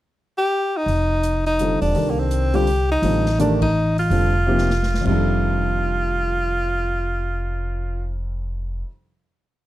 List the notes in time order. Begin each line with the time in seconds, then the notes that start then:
0.38 G4
0.77 D#4
0.86 F1, open hi-hat
1.23 closed hi-hat
1.46 D#4, open hi-hat
1.59 D3 G3 C4 F4 A4, closed hi-hat
1.81 E1 D4, open hi-hat
1.95 C2 D#3 D4 G4 A4 A#4, open hi-hat
2.10 A#3
2.19 C4
2.31 closed hi-hat
2.54 D3 G3 C4 F4 G4, open hi-hat
2.67 open hi-hat
2.91 D#4
3.02 A1 D3 G3 C4 F4 A4, open hi-hat
3.26 snare
3.39 D#3 A3 D4 G4 A#4, closed hi-hat
3.62 D#4, kick, ride
3.98 F4, open hi-hat
4.10 F1 D3 G3 C4 F4 A4, open hi-hat
4.47 C3 F3 A#3 D#4 G4
4.58 snare
4.70 snare
4.83 snare
4.94 snare
5.01 F2 C3
5.05 F1 D#3 G3 F4, kick, crash
5.11 D4 A4